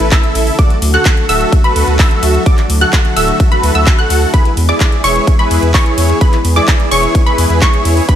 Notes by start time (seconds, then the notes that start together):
Already playing: C#3 E3 A3 E4
0.00 A1, closed hi-hat
0.12 E4 A4 E5 E6, kick, clap, closed hi-hat, ride
0.24 closed hi-hat
0.35 A1, open hi-hat, ride
0.47 open hi-hat
0.59 D3 F#3 F#4 D5 D6, kick, closed hi-hat, ride
0.70 closed hi-hat
0.82 D2, open hi-hat, ride
0.94 F#4 A4 F#5 F#6, closed hi-hat
1.05 kick, clap, closed hi-hat, ride
1.17 closed hi-hat
1.29 D1 F#4 A4 E5 E6, open hi-hat, ride
1.41 closed hi-hat
1.52 kick, closed hi-hat, ride
1.64 F#4 A4 B4 B5, closed hi-hat
1.76 D2, open hi-hat, ride
1.88 D2, closed hi-hat
1.99 F#4 A4 E5 E6, kick, clap, open hi-hat, ride
2.11 closed hi-hat
2.23 D2, open hi-hat, ride
2.35 closed hi-hat
2.46 E4 A4 D5 D6, kick, closed hi-hat, ride
2.58 clap, closed hi-hat
2.70 D2, open hi-hat, ride
2.81 F#4 A4 F#5 F#6, closed hi-hat
2.93 kick, clap, closed hi-hat, ride
3.05 closed hi-hat
3.16 D1 F#4 A4 E5 E6, open hi-hat, ride
3.28 closed hi-hat
3.40 kick, closed hi-hat, ride
3.52 F#4 A4 B4 B5, closed hi-hat
3.63 D2, open hi-hat, ride
3.75 D2 F#4 A4 E5 E6, closed hi-hat
3.87 kick, clap, closed hi-hat, ride
3.98 F#4 A4 F#5 F#6, closed hi-hat
4.10 D2, open hi-hat, ride
4.22 open hi-hat
4.34 E3 G#3 B3 E4 G#4 B4 B5, kick, closed hi-hat, ride
4.45 closed hi-hat
4.57 E2, open hi-hat, ride
4.69 E4 G#4 D5 D6, closed hi-hat
4.80 kick, clap, closed hi-hat, ride
4.92 closed hi-hat
5.04 E1 E4 G#4 C#5 C#6, open hi-hat, ride
5.16 closed hi-hat
5.27 kick, closed hi-hat, ride
5.39 E4 G#4 B4 B5, closed hi-hat
5.51 E2, open hi-hat, ride
5.63 E2, closed hi-hat
5.74 E4 G#4 C#5 C#6, kick, clap, open hi-hat, ride
5.86 closed hi-hat
5.98 E2, open hi-hat, ride
6.09 closed hi-hat
6.21 B4 B5, kick, closed hi-hat, ride
6.33 clap, closed hi-hat
6.45 E2, open hi-hat, ride
6.56 E4 G#4 D5 D6, closed hi-hat
6.68 kick, clap, closed hi-hat, ride
6.80 closed hi-hat
6.91 E1 E4 G#4 C#5 C#6, open hi-hat, ride
7.03 closed hi-hat
7.15 kick, closed hi-hat, ride
7.26 E4 G#4 B4 B5, closed hi-hat
7.38 E2, open hi-hat, ride
7.50 E2, closed hi-hat
7.62 E4 G#4 C#5 C#6, kick, clap, closed hi-hat, ride
7.74 closed hi-hat
7.85 E2, open hi-hat, ride
7.97 open hi-hat
8.08 D3 F#3 D4 F#4 B4 B5, kick, closed hi-hat, ride